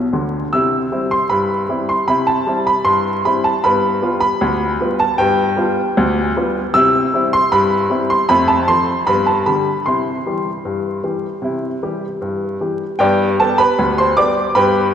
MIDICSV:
0, 0, Header, 1, 2, 480
1, 0, Start_track
1, 0, Key_signature, 0, "major"
1, 0, Tempo, 776197
1, 331, Time_signature, 2, 2, 24, 8
1, 5610, Tempo, 783290
1, 9207, End_track
2, 0, Start_track
2, 0, Title_t, "Upright piano"
2, 0, Program_c, 0, 0
2, 79, Note_on_c, 0, 38, 52
2, 81, Note_on_c, 0, 50, 56
2, 264, Note_off_c, 0, 38, 0
2, 265, Note_off_c, 0, 50, 0
2, 326, Note_on_c, 0, 88, 86
2, 329, Note_on_c, 0, 48, 82
2, 340, Note_on_c, 0, 64, 55
2, 469, Note_off_c, 0, 64, 0
2, 534, Note_off_c, 0, 48, 0
2, 568, Note_on_c, 0, 55, 43
2, 570, Note_on_c, 0, 60, 50
2, 571, Note_on_c, 0, 64, 49
2, 670, Note_off_c, 0, 88, 0
2, 687, Note_on_c, 0, 84, 77
2, 701, Note_off_c, 0, 55, 0
2, 703, Note_off_c, 0, 60, 0
2, 703, Note_off_c, 0, 64, 0
2, 801, Note_on_c, 0, 83, 80
2, 809, Note_off_c, 0, 84, 0
2, 809, Note_on_c, 0, 43, 76
2, 1014, Note_off_c, 0, 43, 0
2, 1045, Note_on_c, 0, 55, 47
2, 1049, Note_on_c, 0, 60, 39
2, 1050, Note_on_c, 0, 64, 54
2, 1148, Note_off_c, 0, 83, 0
2, 1168, Note_on_c, 0, 84, 77
2, 1179, Note_off_c, 0, 55, 0
2, 1182, Note_off_c, 0, 60, 0
2, 1183, Note_off_c, 0, 64, 0
2, 1284, Note_on_c, 0, 83, 85
2, 1285, Note_on_c, 0, 48, 78
2, 1290, Note_off_c, 0, 84, 0
2, 1295, Note_on_c, 0, 64, 53
2, 1402, Note_on_c, 0, 81, 82
2, 1408, Note_off_c, 0, 83, 0
2, 1427, Note_off_c, 0, 64, 0
2, 1493, Note_off_c, 0, 48, 0
2, 1526, Note_on_c, 0, 55, 45
2, 1530, Note_on_c, 0, 60, 45
2, 1535, Note_on_c, 0, 64, 49
2, 1599, Note_off_c, 0, 81, 0
2, 1649, Note_on_c, 0, 83, 83
2, 1660, Note_off_c, 0, 55, 0
2, 1663, Note_off_c, 0, 60, 0
2, 1666, Note_off_c, 0, 64, 0
2, 1760, Note_on_c, 0, 84, 92
2, 1763, Note_on_c, 0, 43, 76
2, 1771, Note_off_c, 0, 83, 0
2, 1971, Note_off_c, 0, 43, 0
2, 1994, Note_off_c, 0, 84, 0
2, 2011, Note_on_c, 0, 83, 78
2, 2013, Note_on_c, 0, 55, 52
2, 2018, Note_on_c, 0, 60, 49
2, 2019, Note_on_c, 0, 64, 51
2, 2129, Note_on_c, 0, 81, 82
2, 2132, Note_off_c, 0, 83, 0
2, 2145, Note_off_c, 0, 55, 0
2, 2148, Note_off_c, 0, 60, 0
2, 2149, Note_off_c, 0, 64, 0
2, 2249, Note_on_c, 0, 83, 90
2, 2251, Note_off_c, 0, 81, 0
2, 2253, Note_on_c, 0, 43, 84
2, 2262, Note_on_c, 0, 59, 61
2, 2392, Note_off_c, 0, 59, 0
2, 2457, Note_off_c, 0, 43, 0
2, 2486, Note_on_c, 0, 55, 47
2, 2489, Note_on_c, 0, 59, 49
2, 2493, Note_on_c, 0, 65, 62
2, 2539, Note_off_c, 0, 83, 0
2, 2600, Note_on_c, 0, 83, 96
2, 2620, Note_off_c, 0, 55, 0
2, 2623, Note_off_c, 0, 59, 0
2, 2625, Note_off_c, 0, 65, 0
2, 2729, Note_on_c, 0, 38, 85
2, 2934, Note_off_c, 0, 38, 0
2, 2972, Note_on_c, 0, 55, 47
2, 2978, Note_on_c, 0, 59, 53
2, 2978, Note_on_c, 0, 65, 53
2, 3062, Note_off_c, 0, 83, 0
2, 3089, Note_on_c, 0, 81, 95
2, 3104, Note_off_c, 0, 55, 0
2, 3109, Note_off_c, 0, 59, 0
2, 3109, Note_off_c, 0, 65, 0
2, 3204, Note_on_c, 0, 79, 101
2, 3209, Note_on_c, 0, 43, 91
2, 3211, Note_off_c, 0, 81, 0
2, 3215, Note_on_c, 0, 59, 53
2, 3346, Note_off_c, 0, 59, 0
2, 3414, Note_off_c, 0, 43, 0
2, 3444, Note_on_c, 0, 55, 59
2, 3450, Note_on_c, 0, 59, 56
2, 3453, Note_on_c, 0, 65, 61
2, 3578, Note_off_c, 0, 55, 0
2, 3582, Note_off_c, 0, 59, 0
2, 3584, Note_off_c, 0, 65, 0
2, 3694, Note_on_c, 0, 38, 94
2, 3896, Note_off_c, 0, 38, 0
2, 3938, Note_on_c, 0, 55, 56
2, 3942, Note_on_c, 0, 59, 53
2, 3942, Note_on_c, 0, 65, 54
2, 4068, Note_off_c, 0, 55, 0
2, 4071, Note_off_c, 0, 59, 0
2, 4071, Note_off_c, 0, 65, 0
2, 4141, Note_off_c, 0, 79, 0
2, 4167, Note_on_c, 0, 88, 113
2, 4170, Note_on_c, 0, 48, 96
2, 4185, Note_on_c, 0, 64, 58
2, 4313, Note_off_c, 0, 64, 0
2, 4374, Note_off_c, 0, 48, 0
2, 4413, Note_on_c, 0, 55, 55
2, 4418, Note_on_c, 0, 60, 55
2, 4421, Note_on_c, 0, 64, 61
2, 4456, Note_off_c, 0, 88, 0
2, 4534, Note_on_c, 0, 84, 103
2, 4545, Note_off_c, 0, 55, 0
2, 4548, Note_off_c, 0, 60, 0
2, 4550, Note_off_c, 0, 64, 0
2, 4650, Note_on_c, 0, 83, 101
2, 4652, Note_off_c, 0, 84, 0
2, 4652, Note_on_c, 0, 43, 95
2, 4855, Note_off_c, 0, 43, 0
2, 4885, Note_on_c, 0, 55, 50
2, 4887, Note_on_c, 0, 60, 52
2, 4893, Note_on_c, 0, 64, 52
2, 4938, Note_off_c, 0, 83, 0
2, 5009, Note_on_c, 0, 84, 92
2, 5019, Note_off_c, 0, 55, 0
2, 5020, Note_off_c, 0, 60, 0
2, 5024, Note_off_c, 0, 64, 0
2, 5125, Note_on_c, 0, 83, 111
2, 5127, Note_on_c, 0, 41, 92
2, 5130, Note_off_c, 0, 84, 0
2, 5139, Note_on_c, 0, 57, 56
2, 5243, Note_on_c, 0, 81, 91
2, 5248, Note_off_c, 0, 83, 0
2, 5269, Note_off_c, 0, 57, 0
2, 5333, Note_off_c, 0, 41, 0
2, 5367, Note_off_c, 0, 81, 0
2, 5367, Note_on_c, 0, 84, 97
2, 5369, Note_on_c, 0, 53, 50
2, 5369, Note_on_c, 0, 60, 53
2, 5371, Note_on_c, 0, 69, 53
2, 5502, Note_off_c, 0, 53, 0
2, 5502, Note_off_c, 0, 60, 0
2, 5504, Note_off_c, 0, 69, 0
2, 5562, Note_off_c, 0, 84, 0
2, 5607, Note_on_c, 0, 83, 93
2, 5608, Note_on_c, 0, 43, 93
2, 5623, Note_on_c, 0, 59, 56
2, 5728, Note_on_c, 0, 81, 78
2, 5730, Note_off_c, 0, 83, 0
2, 5752, Note_off_c, 0, 59, 0
2, 5814, Note_off_c, 0, 43, 0
2, 5849, Note_on_c, 0, 83, 78
2, 5850, Note_off_c, 0, 81, 0
2, 5853, Note_on_c, 0, 50, 45
2, 5853, Note_on_c, 0, 55, 44
2, 5854, Note_on_c, 0, 67, 43
2, 5985, Note_off_c, 0, 50, 0
2, 5985, Note_off_c, 0, 55, 0
2, 5986, Note_off_c, 0, 67, 0
2, 6079, Note_off_c, 0, 83, 0
2, 6092, Note_on_c, 0, 84, 76
2, 6097, Note_on_c, 0, 48, 69
2, 6106, Note_on_c, 0, 64, 46
2, 6235, Note_off_c, 0, 64, 0
2, 6300, Note_off_c, 0, 48, 0
2, 6340, Note_on_c, 0, 52, 42
2, 6342, Note_on_c, 0, 55, 41
2, 6344, Note_on_c, 0, 67, 41
2, 6471, Note_off_c, 0, 52, 0
2, 6473, Note_off_c, 0, 55, 0
2, 6473, Note_off_c, 0, 67, 0
2, 6577, Note_on_c, 0, 43, 64
2, 6780, Note_off_c, 0, 43, 0
2, 6814, Note_on_c, 0, 52, 35
2, 6815, Note_on_c, 0, 55, 35
2, 6819, Note_on_c, 0, 67, 36
2, 6946, Note_off_c, 0, 52, 0
2, 6947, Note_off_c, 0, 55, 0
2, 6950, Note_off_c, 0, 67, 0
2, 7048, Note_on_c, 0, 48, 66
2, 7063, Note_on_c, 0, 64, 47
2, 7193, Note_off_c, 0, 64, 0
2, 7255, Note_off_c, 0, 48, 0
2, 7299, Note_on_c, 0, 52, 38
2, 7299, Note_on_c, 0, 55, 40
2, 7301, Note_on_c, 0, 67, 46
2, 7430, Note_off_c, 0, 52, 0
2, 7430, Note_off_c, 0, 55, 0
2, 7431, Note_off_c, 0, 67, 0
2, 7536, Note_on_c, 0, 43, 59
2, 7740, Note_off_c, 0, 43, 0
2, 7750, Note_off_c, 0, 84, 0
2, 7776, Note_on_c, 0, 52, 36
2, 7779, Note_on_c, 0, 67, 40
2, 7780, Note_on_c, 0, 55, 36
2, 7908, Note_off_c, 0, 52, 0
2, 7910, Note_off_c, 0, 67, 0
2, 7911, Note_off_c, 0, 55, 0
2, 8010, Note_on_c, 0, 79, 93
2, 8015, Note_on_c, 0, 43, 106
2, 8021, Note_on_c, 0, 67, 76
2, 8021, Note_on_c, 0, 74, 73
2, 8025, Note_on_c, 0, 59, 62
2, 8154, Note_off_c, 0, 59, 0
2, 8204, Note_off_c, 0, 79, 0
2, 8219, Note_off_c, 0, 43, 0
2, 8241, Note_off_c, 0, 67, 0
2, 8241, Note_off_c, 0, 74, 0
2, 8261, Note_on_c, 0, 81, 98
2, 8263, Note_on_c, 0, 55, 54
2, 8265, Note_on_c, 0, 69, 73
2, 8266, Note_on_c, 0, 67, 61
2, 8268, Note_on_c, 0, 59, 58
2, 8372, Note_off_c, 0, 69, 0
2, 8373, Note_on_c, 0, 83, 108
2, 8377, Note_off_c, 0, 81, 0
2, 8383, Note_on_c, 0, 71, 82
2, 8393, Note_off_c, 0, 55, 0
2, 8395, Note_off_c, 0, 67, 0
2, 8396, Note_off_c, 0, 59, 0
2, 8499, Note_on_c, 0, 38, 83
2, 8601, Note_off_c, 0, 71, 0
2, 8601, Note_off_c, 0, 83, 0
2, 8619, Note_on_c, 0, 84, 95
2, 8627, Note_on_c, 0, 72, 71
2, 8700, Note_off_c, 0, 38, 0
2, 8732, Note_off_c, 0, 72, 0
2, 8733, Note_on_c, 0, 86, 100
2, 8736, Note_off_c, 0, 84, 0
2, 8736, Note_on_c, 0, 55, 51
2, 8738, Note_on_c, 0, 59, 59
2, 8739, Note_on_c, 0, 67, 60
2, 8740, Note_on_c, 0, 74, 75
2, 8866, Note_off_c, 0, 55, 0
2, 8868, Note_off_c, 0, 59, 0
2, 8869, Note_off_c, 0, 67, 0
2, 8959, Note_off_c, 0, 74, 0
2, 8959, Note_off_c, 0, 86, 0
2, 8967, Note_on_c, 0, 83, 103
2, 8972, Note_on_c, 0, 43, 99
2, 8975, Note_on_c, 0, 71, 73
2, 8977, Note_on_c, 0, 79, 78
2, 8983, Note_on_c, 0, 59, 62
2, 9111, Note_off_c, 0, 59, 0
2, 9160, Note_off_c, 0, 83, 0
2, 9175, Note_off_c, 0, 43, 0
2, 9195, Note_off_c, 0, 71, 0
2, 9196, Note_off_c, 0, 79, 0
2, 9207, End_track
0, 0, End_of_file